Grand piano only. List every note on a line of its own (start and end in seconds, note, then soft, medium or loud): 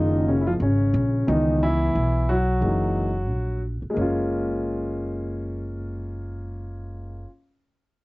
0.00 0.23 D#3 medium
0.00 0.56 G#3 medium
0.00 0.57 A#3 medium
0.00 0.29 D#4 loud
0.00 0.45 F4 medium
0.28 0.41 C#3 medium
0.28 0.42 C#4 medium
0.41 0.46 E4 medium
0.47 0.52 F3 medium
0.47 0.52 F4 medium
0.62 1.25 C#3 medium
0.62 1.30 C#4 medium
1.27 1.59 D#3 medium
1.27 1.61 E3 medium
1.27 2.24 B3 soft
1.27 1.59 D#4 medium
1.63 2.25 E3 medium
1.63 2.31 E4 loud
2.29 3.59 F#3 medium
2.29 3.59 F#4 medium
2.61 3.08 E3 soft
2.61 3.08 G#3 soft
2.61 3.09 A#3 soft
2.61 3.09 D#4 medium
3.90 7.17 G#3 medium
3.90 7.20 A#3 medium
3.98 7.24 C#4 medium
3.98 7.28 F4 medium